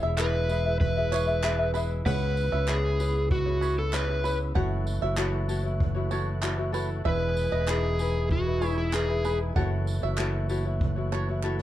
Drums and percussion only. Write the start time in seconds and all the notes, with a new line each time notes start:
0.18 clap
0.49 tambourine
0.81 kick
1.12 clap, tambourine
1.43 clap
1.75 tambourine
2.06 kick, crash
2.37 tambourine
2.68 clap
3.00 tambourine
3.31 kick
3.62 tambourine
3.93 clap
4.25 tambourine
4.55 kick
4.87 tambourine
5.17 clap
5.49 tambourine
5.80 kick
6.11 tambourine
6.42 clap
6.74 tambourine
7.05 kick
7.37 tambourine
7.67 clap
7.99 tambourine
8.31 kick
8.62 tambourine
8.93 clap
9.25 tambourine
9.56 kick
9.87 tambourine
10.17 clap
10.49 tambourine
10.81 kick
11.13 clap
11.43 clap